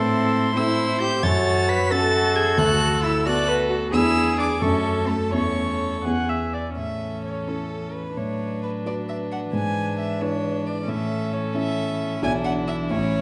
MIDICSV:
0, 0, Header, 1, 6, 480
1, 0, Start_track
1, 0, Key_signature, 3, "major"
1, 0, Tempo, 449775
1, 1319, Time_signature, 6, 3, 24, 8
1, 4681, Tempo, 476948
1, 7561, Tempo, 459770
1, 9001, Tempo, 449438
1, 13899, End_track
2, 0, Start_track
2, 0, Title_t, "Violin"
2, 0, Program_c, 0, 40
2, 0, Note_on_c, 0, 84, 100
2, 607, Note_on_c, 0, 88, 100
2, 623, Note_off_c, 0, 84, 0
2, 1073, Note_off_c, 0, 88, 0
2, 1080, Note_on_c, 0, 91, 105
2, 1314, Note_on_c, 0, 93, 102
2, 1330, Note_off_c, 0, 91, 0
2, 1802, Note_on_c, 0, 95, 105
2, 1818, Note_off_c, 0, 93, 0
2, 2045, Note_on_c, 0, 93, 114
2, 2061, Note_off_c, 0, 95, 0
2, 2513, Note_on_c, 0, 92, 105
2, 2529, Note_off_c, 0, 93, 0
2, 2756, Note_on_c, 0, 90, 122
2, 2772, Note_off_c, 0, 92, 0
2, 3234, Note_off_c, 0, 90, 0
2, 3240, Note_on_c, 0, 88, 88
2, 3482, Note_on_c, 0, 90, 107
2, 3498, Note_off_c, 0, 88, 0
2, 3719, Note_off_c, 0, 90, 0
2, 4199, Note_on_c, 0, 88, 118
2, 4650, Note_off_c, 0, 88, 0
2, 4693, Note_on_c, 0, 86, 83
2, 4920, Note_on_c, 0, 85, 81
2, 4935, Note_off_c, 0, 86, 0
2, 5387, Note_on_c, 0, 81, 70
2, 5402, Note_off_c, 0, 85, 0
2, 5628, Note_off_c, 0, 81, 0
2, 5634, Note_on_c, 0, 85, 86
2, 6347, Note_off_c, 0, 85, 0
2, 7084, Note_on_c, 0, 76, 60
2, 7528, Note_off_c, 0, 76, 0
2, 7563, Note_on_c, 0, 73, 48
2, 7803, Note_on_c, 0, 69, 53
2, 7819, Note_off_c, 0, 73, 0
2, 8275, Note_on_c, 0, 71, 55
2, 8291, Note_off_c, 0, 69, 0
2, 8524, Note_on_c, 0, 73, 57
2, 8539, Note_off_c, 0, 71, 0
2, 8995, Note_off_c, 0, 73, 0
2, 9001, Note_on_c, 0, 71, 51
2, 9087, Note_off_c, 0, 71, 0
2, 9255, Note_on_c, 0, 74, 55
2, 9340, Note_off_c, 0, 74, 0
2, 9495, Note_on_c, 0, 76, 60
2, 9581, Note_off_c, 0, 76, 0
2, 9738, Note_on_c, 0, 78, 57
2, 9823, Note_off_c, 0, 78, 0
2, 9980, Note_on_c, 0, 80, 80
2, 10452, Note_off_c, 0, 80, 0
2, 10461, Note_on_c, 0, 76, 71
2, 10697, Note_on_c, 0, 73, 85
2, 10713, Note_off_c, 0, 76, 0
2, 11177, Note_on_c, 0, 74, 67
2, 11193, Note_off_c, 0, 73, 0
2, 11412, Note_on_c, 0, 76, 86
2, 11428, Note_off_c, 0, 74, 0
2, 11890, Note_on_c, 0, 73, 70
2, 11906, Note_off_c, 0, 76, 0
2, 12126, Note_off_c, 0, 73, 0
2, 12135, Note_on_c, 0, 76, 95
2, 12837, Note_off_c, 0, 76, 0
2, 12853, Note_on_c, 0, 80, 106
2, 12939, Note_off_c, 0, 80, 0
2, 13079, Note_on_c, 0, 78, 89
2, 13164, Note_off_c, 0, 78, 0
2, 13327, Note_on_c, 0, 76, 87
2, 13412, Note_off_c, 0, 76, 0
2, 13565, Note_on_c, 0, 73, 99
2, 13899, Note_off_c, 0, 73, 0
2, 13899, End_track
3, 0, Start_track
3, 0, Title_t, "Viola"
3, 0, Program_c, 1, 41
3, 0, Note_on_c, 1, 69, 92
3, 589, Note_off_c, 1, 69, 0
3, 594, Note_on_c, 1, 72, 89
3, 1311, Note_on_c, 1, 73, 91
3, 1327, Note_off_c, 1, 72, 0
3, 2036, Note_on_c, 1, 69, 97
3, 2052, Note_off_c, 1, 73, 0
3, 3473, Note_on_c, 1, 74, 101
3, 3489, Note_off_c, 1, 69, 0
3, 3711, Note_on_c, 1, 71, 90
3, 3727, Note_off_c, 1, 74, 0
3, 3942, Note_on_c, 1, 66, 74
3, 3958, Note_off_c, 1, 71, 0
3, 4179, Note_on_c, 1, 68, 85
3, 4195, Note_off_c, 1, 66, 0
3, 4907, Note_off_c, 1, 68, 0
3, 4914, Note_on_c, 1, 69, 69
3, 5623, Note_on_c, 1, 73, 62
3, 5638, Note_off_c, 1, 69, 0
3, 6308, Note_off_c, 1, 73, 0
3, 6355, Note_on_c, 1, 78, 87
3, 6598, Note_on_c, 1, 76, 69
3, 6613, Note_off_c, 1, 78, 0
3, 6838, Note_on_c, 1, 74, 57
3, 6853, Note_off_c, 1, 76, 0
3, 7076, Note_off_c, 1, 74, 0
3, 7082, Note_on_c, 1, 61, 43
3, 8478, Note_off_c, 1, 61, 0
3, 8520, Note_on_c, 1, 62, 49
3, 11363, Note_off_c, 1, 62, 0
3, 11402, Note_on_c, 1, 61, 61
3, 12843, Note_on_c, 1, 62, 65
3, 12859, Note_off_c, 1, 61, 0
3, 13561, Note_on_c, 1, 61, 71
3, 13577, Note_off_c, 1, 62, 0
3, 13899, Note_off_c, 1, 61, 0
3, 13899, End_track
4, 0, Start_track
4, 0, Title_t, "Violin"
4, 0, Program_c, 2, 40
4, 0, Note_on_c, 2, 64, 63
4, 591, Note_off_c, 2, 64, 0
4, 601, Note_on_c, 2, 64, 82
4, 1303, Note_off_c, 2, 64, 0
4, 1311, Note_on_c, 2, 66, 77
4, 1998, Note_off_c, 2, 66, 0
4, 2043, Note_on_c, 2, 66, 90
4, 2751, Note_on_c, 2, 69, 72
4, 2767, Note_off_c, 2, 66, 0
4, 3478, Note_off_c, 2, 69, 0
4, 3485, Note_on_c, 2, 69, 87
4, 4185, Note_off_c, 2, 69, 0
4, 4191, Note_on_c, 2, 68, 71
4, 4916, Note_on_c, 2, 69, 74
4, 4932, Note_off_c, 2, 68, 0
4, 5629, Note_off_c, 2, 69, 0
4, 5639, Note_on_c, 2, 69, 62
4, 6349, Note_on_c, 2, 68, 58
4, 6364, Note_off_c, 2, 69, 0
4, 6872, Note_off_c, 2, 68, 0
4, 7087, Note_on_c, 2, 69, 39
4, 8481, Note_off_c, 2, 69, 0
4, 8522, Note_on_c, 2, 71, 38
4, 11364, Note_off_c, 2, 71, 0
4, 11407, Note_on_c, 2, 69, 59
4, 12816, Note_off_c, 2, 69, 0
4, 12851, Note_on_c, 2, 64, 67
4, 13899, Note_off_c, 2, 64, 0
4, 13899, End_track
5, 0, Start_track
5, 0, Title_t, "Cello"
5, 0, Program_c, 3, 42
5, 0, Note_on_c, 3, 60, 90
5, 586, Note_off_c, 3, 60, 0
5, 592, Note_on_c, 3, 64, 91
5, 1067, Note_on_c, 3, 67, 85
5, 1083, Note_off_c, 3, 64, 0
5, 1316, Note_on_c, 3, 69, 81
5, 1332, Note_off_c, 3, 67, 0
5, 1798, Note_on_c, 3, 71, 93
5, 1814, Note_off_c, 3, 69, 0
5, 2037, Note_on_c, 3, 69, 100
5, 2053, Note_off_c, 3, 71, 0
5, 2501, Note_off_c, 3, 69, 0
5, 2508, Note_on_c, 3, 68, 90
5, 2747, Note_off_c, 3, 68, 0
5, 2753, Note_on_c, 3, 66, 101
5, 3233, Note_on_c, 3, 64, 85
5, 3249, Note_off_c, 3, 66, 0
5, 3472, Note_on_c, 3, 66, 87
5, 3488, Note_off_c, 3, 64, 0
5, 3714, Note_off_c, 3, 66, 0
5, 4191, Note_on_c, 3, 64, 93
5, 4645, Note_off_c, 3, 64, 0
5, 4675, Note_on_c, 3, 62, 77
5, 4755, Note_off_c, 3, 62, 0
5, 4912, Note_on_c, 3, 61, 85
5, 5382, Note_on_c, 3, 57, 68
5, 5397, Note_off_c, 3, 61, 0
5, 5617, Note_on_c, 3, 61, 66
5, 5632, Note_off_c, 3, 57, 0
5, 6353, Note_off_c, 3, 61, 0
5, 7081, Note_on_c, 3, 52, 39
5, 8520, Note_on_c, 3, 54, 39
5, 8536, Note_off_c, 3, 52, 0
5, 9969, Note_off_c, 3, 54, 0
5, 9975, Note_on_c, 3, 52, 50
5, 12803, Note_off_c, 3, 52, 0
5, 12847, Note_on_c, 3, 52, 72
5, 13899, Note_off_c, 3, 52, 0
5, 13899, End_track
6, 0, Start_track
6, 0, Title_t, "Grand piano"
6, 0, Program_c, 4, 0
6, 0, Note_on_c, 4, 45, 80
6, 47, Control_c, 4, 64, 127
6, 579, Note_off_c, 4, 45, 0
6, 598, Note_on_c, 4, 60, 57
6, 604, Note_on_c, 4, 64, 60
6, 609, Note_on_c, 4, 69, 65
6, 1273, Note_off_c, 4, 60, 0
6, 1276, Note_off_c, 4, 64, 0
6, 1278, Note_off_c, 4, 69, 0
6, 1314, Note_on_c, 4, 42, 78
6, 1339, Control_c, 4, 64, 0
6, 1491, Control_c, 4, 64, 127
6, 2021, Note_off_c, 4, 42, 0
6, 2045, Note_on_c, 4, 61, 61
6, 2050, Note_on_c, 4, 66, 62
6, 2053, Note_on_c, 4, 69, 62
6, 2714, Note_off_c, 4, 61, 0
6, 2717, Note_off_c, 4, 66, 0
6, 2718, Note_off_c, 4, 69, 0
6, 2748, Note_on_c, 4, 38, 77
6, 2779, Control_c, 4, 64, 0
6, 2984, Control_c, 4, 64, 127
6, 3455, Note_off_c, 4, 38, 0
6, 3481, Note_on_c, 4, 59, 58
6, 3484, Note_on_c, 4, 66, 56
6, 3487, Note_on_c, 4, 69, 64
6, 4155, Note_off_c, 4, 59, 0
6, 4156, Note_off_c, 4, 66, 0
6, 4157, Note_off_c, 4, 69, 0
6, 4187, Note_on_c, 4, 59, 55
6, 4192, Note_on_c, 4, 40, 69
6, 4197, Note_on_c, 4, 62, 50
6, 4203, Note_on_c, 4, 68, 54
6, 4216, Control_c, 4, 64, 0
6, 4369, Control_c, 4, 64, 127
6, 4870, Note_off_c, 4, 59, 0
6, 4875, Note_off_c, 4, 62, 0
6, 4878, Note_off_c, 4, 68, 0
6, 4892, Note_off_c, 4, 40, 0
6, 4911, Note_on_c, 4, 57, 49
6, 4912, Note_on_c, 4, 42, 67
6, 4918, Note_on_c, 4, 61, 48
6, 4920, Note_on_c, 4, 69, 44
6, 4935, Control_c, 4, 64, 0
6, 5076, Control_c, 4, 64, 127
6, 5586, Note_off_c, 4, 57, 0
6, 5589, Note_off_c, 4, 61, 0
6, 5590, Note_off_c, 4, 69, 0
6, 5605, Note_off_c, 4, 42, 0
6, 5622, Note_on_c, 4, 40, 64
6, 5624, Note_on_c, 4, 57, 42
6, 5629, Note_on_c, 4, 64, 40
6, 5636, Note_on_c, 4, 69, 46
6, 5649, Control_c, 4, 64, 0
6, 5800, Control_c, 4, 64, 127
6, 6316, Note_off_c, 4, 57, 0
6, 6319, Note_off_c, 4, 64, 0
6, 6322, Note_off_c, 4, 69, 0
6, 6334, Note_off_c, 4, 40, 0
6, 6355, Note_on_c, 4, 59, 38
6, 6356, Note_on_c, 4, 40, 54
6, 6363, Note_on_c, 4, 64, 39
6, 6368, Note_on_c, 4, 68, 42
6, 6379, Control_c, 4, 64, 0
6, 6534, Control_c, 4, 64, 127
6, 7046, Note_off_c, 4, 59, 0
6, 7050, Note_off_c, 4, 64, 0
6, 7052, Note_off_c, 4, 68, 0
6, 7065, Note_off_c, 4, 40, 0
6, 7079, Note_on_c, 4, 45, 35
6, 7109, Control_c, 4, 64, 0
6, 7252, Control_c, 4, 64, 127
6, 7777, Note_off_c, 4, 45, 0
6, 7799, Note_on_c, 4, 61, 31
6, 7804, Note_on_c, 4, 64, 31
6, 7805, Note_on_c, 4, 69, 32
6, 8479, Note_off_c, 4, 61, 0
6, 8482, Note_off_c, 4, 64, 0
6, 8482, Note_off_c, 4, 69, 0
6, 8522, Note_on_c, 4, 45, 45
6, 8543, Control_c, 4, 64, 0
6, 8691, Control_c, 4, 64, 127
6, 9224, Note_off_c, 4, 45, 0
6, 9242, Note_on_c, 4, 62, 35
6, 9248, Note_on_c, 4, 66, 33
6, 9252, Note_on_c, 4, 71, 34
6, 9929, Note_off_c, 4, 62, 0
6, 9932, Note_off_c, 4, 66, 0
6, 9934, Note_off_c, 4, 71, 0
6, 9965, Note_on_c, 4, 44, 52
6, 9994, Control_c, 4, 64, 0
6, 10196, Control_c, 4, 64, 127
6, 10671, Note_off_c, 4, 44, 0
6, 10700, Note_on_c, 4, 62, 44
6, 10704, Note_on_c, 4, 64, 39
6, 10708, Note_on_c, 4, 71, 46
6, 11366, Note_off_c, 4, 62, 0
6, 11368, Note_off_c, 4, 64, 0
6, 11370, Note_off_c, 4, 71, 0
6, 11405, Note_on_c, 4, 45, 59
6, 11426, Control_c, 4, 64, 0
6, 11624, Control_c, 4, 64, 127
6, 12100, Note_off_c, 4, 45, 0
6, 12118, Note_on_c, 4, 61, 53
6, 12123, Note_on_c, 4, 64, 50
6, 12127, Note_on_c, 4, 76, 53
6, 12800, Note_off_c, 4, 61, 0
6, 12802, Note_off_c, 4, 64, 0
6, 12804, Note_off_c, 4, 76, 0
6, 12838, Note_on_c, 4, 35, 70
6, 12839, Note_on_c, 4, 62, 49
6, 12847, Note_on_c, 4, 64, 51
6, 12851, Note_on_c, 4, 76, 47
6, 12867, Control_c, 4, 64, 0
6, 13029, Control_c, 4, 64, 127
6, 13522, Note_off_c, 4, 62, 0
6, 13526, Note_off_c, 4, 64, 0
6, 13528, Note_off_c, 4, 76, 0
6, 13543, Note_off_c, 4, 35, 0
6, 13569, Note_on_c, 4, 61, 54
6, 13571, Note_on_c, 4, 33, 68
6, 13575, Note_on_c, 4, 64, 51
6, 13584, Note_on_c, 4, 76, 50
6, 13589, Control_c, 4, 64, 0
6, 13739, Control_c, 4, 64, 127
6, 13899, Note_off_c, 4, 33, 0
6, 13899, Note_off_c, 4, 61, 0
6, 13899, Note_off_c, 4, 64, 0
6, 13899, Note_off_c, 4, 76, 0
6, 13899, End_track
0, 0, End_of_file